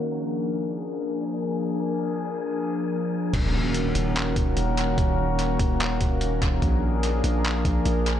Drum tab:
CC |--------|--------|x-------|--------|
HH |--------|--------|x-xxxxxx|x-xxxxxx|
CP |--------|--------|----x---|----x---|
BD |--------|--------|o----o--|o--o-o-o|

CC |--------|
HH |x-xxxxxx|
CP |----x---|
BD |o----o--|